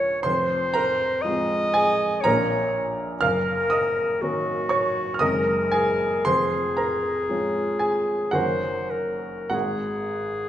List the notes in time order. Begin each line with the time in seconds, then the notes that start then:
Already playing: C#1 C#2 F3 A#3 C#4 C#5 C#6
0.22 F1 F2 C5 C6
0.74 A#4 A#5
1.22 F3 G#3 D#5
1.26 C4
1.74 G#4 G#5
2.21 C#5 A#5
2.25 A#1 A#2 F3 A#3 C#4 A#4
3.21 F#1 F#2 A#4 F5 F6
3.70 D#5 D#6
4.22 D#3 A#3 C#4 F#4
4.69 C#5 C#6
5.14 F6
5.19 F#1 F#2 D#3 G#3 C4 A#4 D#5 D#6
5.72 G#4 G#5
6.25 F1 F2 G#4 C5 C6
6.77 A#4 A#5
7.29 F3 G#3 C#4
7.79 G#4 G#5
8.31 F#1 F#2 D#3 A#3 C#4 F#4 C5 F#5
8.90 A#4
9.50 G#1 G#2 F#4 G#4 F#5